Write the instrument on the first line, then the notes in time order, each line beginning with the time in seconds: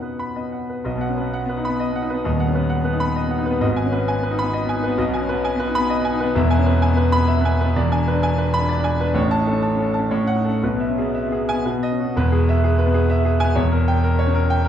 grand piano
Already playing: B2 B3 C#4 D#4 B4 D#5 F#5
0.02 B4
0.19 B5
0.36 B3 D#5
0.52 F#5
0.69 B4
0.84 B1 B2 D#5
0.97 B3 F#5
1.08 C#4
1.17 B4
1.21 B3
1.33 F#5
1.45 B3 B4
1.57 D#4
1.65 B5
1.69 B3
1.80 D#5
1.92 B3 F#5
2.02 D#4
2.10 B3 B4
2.24 D#1 D#2 D#5
2.36 B3 F#5
2.48 C#4
2.55 B3 B4
2.70 F#5
2.81 B3 B4
2.93 D#4
3.00 B5
3.04 B3
3.16 D#5
3.27 B3 F#5
3.38 D#4
3.46 B4
3.50 B3
3.60 G#1 G#2 D#5
3.72 B3 G#5
3.85 C#4
3.92 B4
3.97 B3
4.08 G#5
4.19 B3 B4
4.31 D#4
4.39 B3 B5
4.53 D#5
4.65 B3 G#5
4.76 D#4
4.83 B4
4.88 B3
4.97 B1 B2 D#5
5.10 B3 G#5
5.21 C#4
5.29 B4
5.33 B3
5.45 G#5
5.56 B3
5.60 B4
5.67 D#4
5.75 B3 B5
5.90 D#5
6.01 B3 G#5
6.12 D#4
6.20 B3 B4
6.35 E1 E2 E5
6.47 B3 G#5
6.58 C#4
6.66 B4
6.70 B3
6.82 G#5
6.93 B3 B4
7.12 B5
7.17 B3
7.28 E5
7.41 B3
7.45 G#5
7.61 B4
7.65 B3
7.76 E1 E2 D5
7.87 D4
7.92 G#5
8.08 D4 B4
8.23 G#5
8.34 D4
8.38 B4
8.54 B5
8.58 D4
8.69 D5
8.80 D4 G#5
9.01 D4 B4
9.14 A1 A2 C#5
9.27 C#4
9.31 A5
9.39 D#4
9.47 C#4 A4
9.62 A5
9.75 C#4
9.79 A4
9.94 A5
9.99 C#4
10.11 A2 C#5
10.24 C#4 F#5
10.35 D#4
10.45 A4
10.49 C#4
10.63 B1 B2 B4
10.77 B3 E5
10.89 C#4
10.98 B3 G#4
11.15 E5
11.28 B3
11.32 G#4
11.49 G#5
11.53 B3
11.65 B2 B4
11.78 B3
11.83 D#5
11.92 C#4
12.00 F#4
12.04 B3
12.16 E1 E2 B4
12.32 G#4
12.49 E5
12.64 G#4
12.79 B4
12.86 B3
12.94 G#4
13.10 E5
13.25 G#4
13.40 B3 G#5
13.55 E1 E2 C#5
13.72 A#4
13.88 G5
14.04 A#4
14.19 C#5
14.26 C#4
14.35 A#4
14.50 G5
14.65 A#4